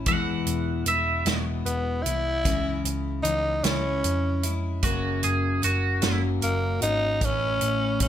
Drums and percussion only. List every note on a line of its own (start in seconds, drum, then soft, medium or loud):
0.06 kick loud
0.06 closed hi-hat medium
0.47 closed hi-hat medium
0.86 closed hi-hat medium
1.26 snare medium
1.26 closed hi-hat medium
1.66 closed hi-hat soft
2.06 closed hi-hat medium
2.45 kick loud
2.45 closed hi-hat medium
2.85 closed hi-hat medium
3.25 closed hi-hat medium
3.64 snare medium
3.64 closed hi-hat medium
4.04 closed hi-hat medium
4.43 closed hi-hat medium
4.83 kick loud
4.83 closed hi-hat medium
5.23 closed hi-hat medium
5.63 closed hi-hat medium
6.02 snare medium
6.02 closed hi-hat medium
6.42 closed hi-hat medium
6.82 closed hi-hat medium
7.21 kick loud
7.21 closed hi-hat medium
7.61 closed hi-hat medium
8.00 kick medium
8.00 closed hi-hat medium